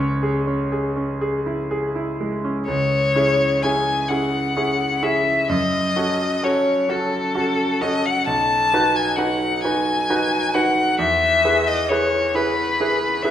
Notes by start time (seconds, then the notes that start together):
Already playing: C#2 C#5
0.00 C#4
0.23 G#4
0.47 C#4
0.72 G#4
0.96 C#4
1.21 G#4
1.46 E4
1.71 G#4
1.95 E4
2.20 G#3
2.44 C#4
2.67 C#2 C#5
3.16 C#4 E4 G#4
3.62 C#4 E4 G#4 G#5
4.09 C#4 E4 G#4 F#5
4.57 C#4 E4 G#4
5.02 C#4 E4 G#4 E5
5.49 F#2 D#5
5.96 C#4 F#4 A4
6.43 C#4 F#4 A4 C#5
6.89 C#4 F#4 A4
7.35 C#4 F#4 A4
7.81 C#4 F#4 A4 D#5
8.06 F#5
8.27 B1 A5
8.73 D#4 F#4 B4
8.95 G#5
9.16 D#4 F#4 B4 F#5
9.63 D#4 F#4 B4 G#5
10.10 D#4 F#4 B4
10.54 D#4 F#4 B4 F#5
10.99 E2 E5
11.45 E4 G#4 B4
11.67 D#5
11.89 E4 G#4 B4 C#5
12.35 E4 G#4 B4
12.80 E4 G#4 B4
13.23 E4 G#4 B4 E5